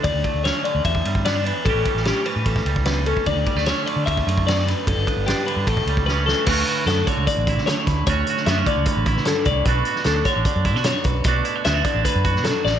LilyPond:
<<
  \new Staff \with { instrumentName = "Clean electric guitar" } { \time 4/4 \key d \major \tempo 4 = 150 d''4 cis''8 d''8 e''4 d''8 b'8 | a'4 g'8 b'8 a'4 b'8 a'8 | d''4 cis''8 d''8 e''4 d''8 b'8 | a'4 g'8 b'8 a'4 b'8 a'8 |
b'4 a'8 cis''8 d''4 cis''8 b'8 | cis''4 e''8 d''8 b'4 a'8 d''8 | b'4 a'8 cis''8 d''4 cis''8 b'8 | d''4 e''8 d''8 b'4 a'8 d''8 | }
  \new Staff \with { instrumentName = "Clean electric guitar" } { \time 4/4 \key d \major << { r8 a8 cis'4 r8 g8 b16 d'8. | <e g cis' g'>8 g8 cis'4. g4 cis'8 | r8 g16 a16 cis'4. a4. | r8 b8 d'4 r8 g8 cis'4 |
<a cis' fis'>8 fis'8 b16 r4 r16 e'4. | <a cis' fis'>8 fis'8 b16 cis'4~ cis'16 e'4. | <a d' fis'>8 fis'8 d'4. e'16 fis'4~ fis'16 | <a d' fis'>8 e'16 fis'16 b16 d'4~ d'16 fis'4. | } \\ { d,4. d8 e,4. e8 | a,4. e4. e,4 | d,4. d4. e,8 fis,8 | g,4. d8 a,4. e8 |
d,4. d4. a,4 | d,4. d4. g,8 a,8 | b,4. d4. fis,4 | b,4. d4. fis,4 | } >> }
  \new Staff \with { instrumentName = "Fingered electric bass" } { \clef bass \time 4/4 \key d \major d,16 d,16 r16 d,8 r8 d,16 e,8 g,4. | a,,16 a,,16 r16 a,,8 r8 a,16 a,,8 cis,4. | d,16 d,16 r16 d,8 r8 d16 d,8 fis,4. | g,,16 g,,16 r16 g,,8 r8 g,16 a,,8 cis,4. |
d,8 r8 fis,8 r16 cis,16 r16 a,,8 d8 r16 d,8 | d,8 r8 fis,8 r16 cis,16 r16 a,,8 d8 r16 c,8 | b,,8 r8 d,8 r16 a,,16 r16 fis,8 b,8 r16 b,,8 | b,,8 r8 d,8 r16 a,,16 r16 fis,8 b,8 r16 a,,8 | }
  \new DrumStaff \with { instrumentName = "Drums" } \drummode { \time 4/4 <bd cymr>8 <bd cymr>8 <cymr sn>8 cymr8 <bd cymr>16 bd16 cymr16 bd16 <cymr sn>8 cymr8 | <bd cymr>8 <bd cymr>16 sn16 <cymr sn>8 cymr8 <bd cymr>16 <bd sn>16 cymr16 bd16 <cymr sn>8 cymr16 bd16 | <bd cymr>8 <bd cymr>16 sn16 <cymr sn>8 cymr8 <bd cymr>16 bd16 cymr16 bd16 <cymr sn>16 sn16 <cymr sn>8 | <bd cymr>8 <bd cymr>8 <cymr sn>8 cymr8 <bd cymr>16 bd16 cymr16 bd16 sn8 sn8 |
<cymc bd>8 hh8 <hh sn>8 <hh bd>8 <hh bd>8 <hh bd>16 sn16 <hh sn>8 <hh bd sn>8 | <hh bd>8 hh16 sn16 <hh sn>8 <hh bd>8 <hh bd>8 <hh bd>16 sn16 <hh sn>8 <hh bd>8 | <hh bd>8 hh16 sn16 <hh sn>8 <hh bd sn>8 <hh bd>8 <hh bd>16 sn16 <hh sn>8 <hh bd>8 | <hh bd>8 hh8 <hh sn>8 <hh bd>8 <hh bd>8 <hh bd>16 sn16 <hh sn>8 sn8 | }
>>